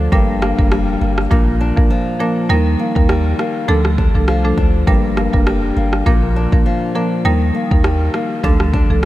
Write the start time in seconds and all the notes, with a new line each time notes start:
Already playing: D3 F3 D4
0.12 G1 G2 G3 A#3 D4 A#4, kick
0.42 A#3, cross-stick
0.58 F1 G3 A#3 D4 A#4, kick
0.72 G3, cross-stick
1.01 G1 A#3
1.18 cross-stick
1.31 A#1 A#2 F3 A#3 D4 A#4, kick
1.61 D4
1.77 A#1 F3 A#3 D4 A#4, kick
1.90 F3
2.20 F3 A#3 D4 A#4
2.49 D#2 D#3 G3 A#3 D#4 A#4
2.79 A#3
2.96 D#2 G3 A#3 D#4 A#4, kick
3.09 G3, cross-stick
3.39 A#3, cross-stick
3.68 D2 D3 F3 A3 D4 A4
3.85 cross-stick
3.98 D4, kick
4.15 C2 F3 A3 D4 A4
4.28 F3, cross-stick
4.44 F3 A3 D4 A4
4.58 D2 D4, kick
4.87 G1 G2 G3 A#3 D4 A#4, kick
5.17 A#3, cross-stick
5.33 F1 G3 A#3 D4 A#4, kick
5.47 G3, cross-stick
5.77 G1 A#3
5.93 cross-stick
6.06 A#1 A#2 F3 A#3 D4 A#4, kick
6.36 D4
6.52 A#1 F3 A#3 D4 A#4, kick
6.66 F3
6.95 F3 A#3 D4 A#4
7.25 D#2 D#3 G3 A#3 D#4 A#4
7.55 A#3
7.71 D#2 G3 A#3 D#4 A#4, kick
7.84 G3, cross-stick
8.14 A#3, cross-stick
8.44 D2 D3 F3 A3 D4 A4, kick
8.60 cross-stick
8.73 D4, kick
8.90 C2 F3 A3 D4 A4